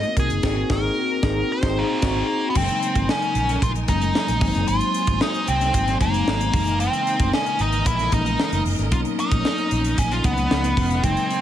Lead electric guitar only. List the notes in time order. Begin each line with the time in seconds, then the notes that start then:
Already playing: D#5
0.20 G#4
0.72 A#4
1.52 C5
1.78 A#3
2.50 B3
2.57 C4
3.10 C#4
3.63 F4
3.89 D#4
4.68 F4
5.22 D#4
5.48 C4
6.02 A#3
6.54 A#3
6.80 C4
7.34 C#4
7.61 D#4
7.87 E4
8.14 D#4
8.93 F4
9.20 D#4
9.99 C#4
10.12 F4
10.25 B3
11.05 C4